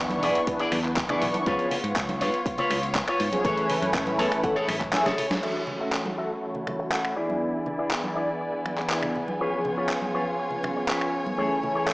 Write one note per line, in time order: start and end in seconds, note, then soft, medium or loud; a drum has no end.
0.00 0.22 E2 medium
0.00 0.44 E3 medium
0.00 0.44 B3 medium
0.00 3.41 B3 medium
0.00 0.45 D4 medium
0.00 1.44 D4 medium
0.00 1.42 E4 medium
0.00 0.45 C#6 loud
0.09 muted clean electric guitar stroke soft
0.09 closed hi-hat soft
0.09 high conga medium
0.22 0.30 B1 medium
0.22 0.41 E4 medium
0.22 0.41 G#4 medium
0.22 0.42 D5 loud
0.22 open hi-hat medium
0.35 closed hi-hat soft
0.47 0.60 E3 medium
0.47 0.60 B3 medium
0.47 0.60 D4 medium
0.47 0.60 B4 medium
0.47 kick loud
0.47 closed hi-hat medium
0.59 0.78 E4 loud
0.59 0.78 G#4 medium
0.59 0.79 D5 loud
0.59 closed hi-hat soft
0.72 1.02 E2 medium
0.72 finger snap medium
0.72 open hi-hat medium
0.72 high conga medium
0.84 clap soft
0.84 closed hi-hat soft
0.96 muted clean electric guitar stroke medium
0.96 kick loud
0.96 clap loud
0.96 closed hi-hat medium
1.09 1.43 E3 medium
1.09 1.44 B3 medium
1.09 1.44 D4 medium
1.09 1.28 E4 medium
1.09 1.28 G#4 medium
1.09 1.28 D5 medium
1.09 1.44 C#6 medium
1.09 finger snap medium
1.09 closed hi-hat soft
1.09 low conga medium
1.21 1.30 B1 medium
1.21 open hi-hat medium
1.21 low conga medium
1.34 closed hi-hat soft
1.34 high conga medium
1.46 1.55 C#2 loud
1.46 1.66 F3 medium
1.46 1.67 B3 medium
1.46 1.67 C#4 medium
1.46 1.78 F4 loud
1.46 3.43 F4 medium
1.46 1.67 G#4 medium
1.46 1.78 B4 medium
1.46 5.39 C#5 medium
1.46 1.78 C#5 loud
1.46 kick loud
1.46 closed hi-hat medium
1.59 closed hi-hat soft
1.71 open hi-hat medium
1.71 low conga medium
1.84 1.92 G#2 loud
1.84 closed hi-hat soft
1.96 2.22 C#2 medium
1.96 kick loud
1.96 clap loud
1.96 closed hi-hat medium
2.09 muted clean electric guitar stroke soft
2.09 closed hi-hat soft
2.09 high conga medium
2.21 2.29 G#2 medium
2.21 2.40 F4 medium
2.21 2.40 B4 medium
2.21 2.40 C#5 loud
2.21 open hi-hat medium
2.34 closed hi-hat soft
2.46 kick loud
2.46 closed hi-hat medium
2.58 2.77 F4 loud
2.58 2.77 B4 medium
2.58 2.77 C#5 loud
2.58 closed hi-hat soft
2.58 low conga medium
2.70 3.00 C#2 medium
2.70 finger snap medium
2.70 open hi-hat loud
2.70 high conga medium
2.70 low conga medium
2.83 closed hi-hat soft
2.95 muted clean electric guitar stroke medium
2.95 kick loud
2.95 clap loud
2.95 closed hi-hat medium
3.08 3.27 F4 medium
3.08 3.27 B4 medium
3.08 3.27 C#5 medium
3.08 finger snap medium
3.08 closed hi-hat soft
3.20 3.28 G#2 medium
3.20 open hi-hat medium
3.32 3.43 F3 medium
3.32 3.43 B3 medium
3.32 3.43 C#4 medium
3.32 3.43 G#4 medium
3.32 closed hi-hat soft
3.32 high conga medium
3.44 3.53 A1 loud
3.44 4.41 E3 medium
3.44 4.41 A3 medium
3.44 5.41 A3 medium
3.44 4.41 C#4 medium
3.44 5.41 E4 medium
3.44 3.76 G#4 loud
3.44 3.76 A4 medium
3.44 4.42 B4 loud
3.44 3.76 C#5 loud
3.44 kick loud
3.44 closed hi-hat medium
3.57 closed hi-hat soft
3.69 open hi-hat loud
3.69 low conga medium
3.82 3.90 F#2 medium
3.82 closed hi-hat soft
3.94 4.19 A1 medium
3.94 kick loud
3.94 clap loud
3.94 closed hi-hat medium
4.06 muted clean electric guitar stroke soft
4.06 closed hi-hat soft
4.06 high conga loud
4.18 4.27 E2 medium
4.18 4.38 G#4 medium
4.18 4.38 A4 medium
4.18 4.38 C#5 medium
4.18 4.42 A5 medium
4.18 open hi-hat medium
4.32 finger snap medium
4.32 closed hi-hat soft
4.43 4.56 E3 medium
4.43 4.56 A3 medium
4.43 4.57 C#4 medium
4.43 4.57 A4 medium
4.43 4.67 F#5 medium
4.43 kick loud
4.43 closed hi-hat medium
4.56 4.75 G#4 loud
4.56 4.75 A4 loud
4.56 4.69 C#5 loud
4.56 closed hi-hat soft
4.68 4.93 A1 medium
4.68 4.92 E5 medium
4.68 finger snap medium
4.68 open hi-hat loud
4.68 high conga medium
4.81 kick medium
4.81 clap soft
4.81 closed hi-hat soft
4.93 5.06 E3 medium
4.93 5.06 A3 medium
4.93 5.06 C#4 medium
4.93 5.06 G#4 loud
4.93 5.17 E5 medium
4.93 muted clean electric guitar stroke medium
4.93 snare medium
4.93 clap loud
4.93 closed hi-hat medium
5.06 5.24 G#4 medium
5.06 5.25 A4 medium
5.06 5.17 C#5 loud
5.06 snare medium
5.06 closed hi-hat soft
5.06 low conga medium
5.18 5.41 C#5 medium
5.18 open hi-hat medium
5.18 low conga medium
5.30 snare medium
5.30 closed hi-hat soft
5.30 high conga medium
5.42 7.13 E3 medium
5.42 7.14 A3 medium
5.42 7.15 A3 medium
5.42 7.14 C#4 medium
5.42 9.36 E4 medium
5.42 5.62 F#4 loud
5.42 7.15 F#4 medium
5.42 7.14 F#4 medium
5.42 5.62 A4 medium
5.42 7.15 C#5 medium
5.42 5.62 E5 loud
5.42 crash medium
5.67 low conga medium
5.80 5.93 F#4 medium
5.80 5.93 A4 medium
5.80 5.93 E5 medium
5.92 clap loud
6.06 muted clean electric guitar stroke soft
6.06 high conga medium
6.18 6.30 F#4 medium
6.18 6.30 A4 medium
6.18 6.30 E5 medium
6.42 muted clean electric guitar stroke soft
6.55 muted clean electric guitar stroke soft
6.55 low conga medium
6.67 finger snap medium
6.67 muted clean electric guitar stroke soft
6.67 high conga medium
6.67 low conga medium
6.79 muted clean electric guitar stroke medium
6.91 7.16 F#4 medium
6.91 7.16 A4 medium
6.91 7.16 F#5 medium
6.91 clap loud
7.05 finger snap medium
7.16 9.37 E3 medium
7.16 9.37 B3 medium
7.16 11.34 B3 medium
7.16 9.37 D4 medium
7.16 7.66 E4 medium
7.16 7.66 G#4 medium
7.16 9.38 G#4 medium
7.16 7.66 D5 medium
7.16 9.38 D5 medium
7.16 11.94 G#5 medium
7.30 high conga medium
7.66 low conga medium
7.78 7.91 E4 medium
7.78 7.91 G#4 medium
7.78 7.91 D5 medium
7.91 clap loud
8.03 muted clean electric guitar stroke soft
8.03 high conga medium
8.16 8.28 E4 medium
8.16 8.28 G#4 medium
8.16 8.29 D5 medium
8.40 muted clean electric guitar stroke soft
8.53 muted clean electric guitar stroke soft
8.66 finger snap medium
8.66 muted clean electric guitar stroke soft
8.66 high conga medium
8.78 muted clean electric guitar stroke loud
8.78 clap soft
8.90 9.15 E4 medium
8.90 9.16 G#4 medium
8.90 9.16 D5 medium
8.90 clap loud
9.02 finger snap medium
9.02 low conga medium
9.15 low conga medium
9.28 high conga medium
9.39 11.35 F3 medium
9.39 11.35 B3 medium
9.39 11.35 C#4 medium
9.39 11.36 F4 medium
9.39 9.59 F4 medium
9.39 11.36 G#4 medium
9.39 9.59 B4 medium
9.39 11.94 C#5 medium
9.39 9.59 C#5 loud
9.65 low conga medium
9.77 9.90 F4 medium
9.77 9.90 B4 medium
9.77 9.90 C#5 medium
9.89 clap loud
10.02 muted clean electric guitar stroke soft
10.02 high conga medium
10.14 10.27 F4 medium
10.14 10.27 B4 medium
10.14 10.27 C#5 medium
10.39 muted clean electric guitar stroke soft
10.51 muted clean electric guitar stroke soft
10.51 low conga medium
10.63 finger snap medium
10.63 muted clean electric guitar stroke soft
10.63 high conga medium
10.63 low conga medium
10.76 muted clean electric guitar stroke loud
10.88 11.13 F4 medium
10.88 11.14 B4 medium
10.88 11.14 C#5 medium
10.88 clap loud
11.01 finger snap medium
11.26 high conga medium
11.38 11.94 E3 medium
11.38 11.94 A3 medium
11.38 11.94 C#4 medium
11.38 11.94 E4 medium
11.38 11.57 G#4 loud
11.38 11.57 A4 medium
11.38 11.57 C#5 loud
11.38 11.94 G#5 medium
11.63 low conga medium
11.75 11.88 G#4 medium
11.75 11.88 A4 medium
11.75 11.88 C#5 medium
11.88 clap loud